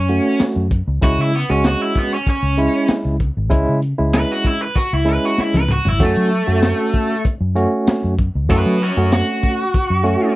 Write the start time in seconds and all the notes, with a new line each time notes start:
Already playing: F#2 C#4
0.09 A3 C#4 F#4, closed hi-hat
0.39 muted fingered electric bass stroke, snare, closed hi-hat, tambourine
0.56 F#2
0.71 kick, closed hi-hat
0.88 C#2
1.02 C#2 G#3 C#4 E4 F#4, kick, closed hi-hat
1.19 C#3 E4
1.33 B3, closed hi-hat
1.49 C#2 G#3 C#4 F#4
1.64 F#4, snare, closed hi-hat, tambourine
1.82 E4
1.96 B3, kick, closed hi-hat
2.14 C#4
2.26 C#4, kick, closed hi-hat
2.43 C#2
2.58 G#3 C#4 E4, closed hi-hat
2.88 muted fingered electric bass stroke, snare, closed hi-hat, tambourine
3.05 C#2
3.20 kick, closed hi-hat
3.37 G#1
3.50 C#2 G#3 C#4 E4, kick, closed hi-hat
3.69 C#3
3.82 closed hi-hat
3.98 C#2 G#3 C#4 E4
4.13 B4, snare, closed hi-hat, tambourine
4.32 F#4
4.44 E4, kick, closed hi-hat
4.62 B4
4.76 F#4, kick, closed hi-hat
4.93 C#2 E4
5.05 G#3 C#4 E4, closed hi-hat
5.09 B4
5.25 F#4
5.38 E4, muted fingered electric bass stroke, snare
5.54 C#2 B4, high tom
5.68 F#4, mid tom
5.85 G#1 E4, floor tom
6.00 F#2 A3 C#4 F#4, kick, closed hi-hat
6.17 F#3
6.31 closed hi-hat
6.47 F#2 A3 C#4 F#4
6.62 snare, closed hi-hat, tambourine
6.94 kick, closed hi-hat
7.25 kick, closed hi-hat
7.41 F#2
7.55 A3 C#4 F#4, closed hi-hat
7.87 muted fingered electric bass stroke, snare, closed hi-hat, tambourine
8.04 F#2
8.19 kick, closed hi-hat
8.35 C#2
8.49 F#2 A3 C#4 F#4 B4, kick, closed hi-hat
8.66 F#3
8.82 C#4 F#4, closed hi-hat
8.97 F#2 A3 C#4 F#4
9.12 F#4, snare, closed hi-hat, tambourine
9.43 kick, closed hi-hat
9.74 kick, closed hi-hat
9.90 F#2
10.04 A3 C#4 F#4, closed hi-hat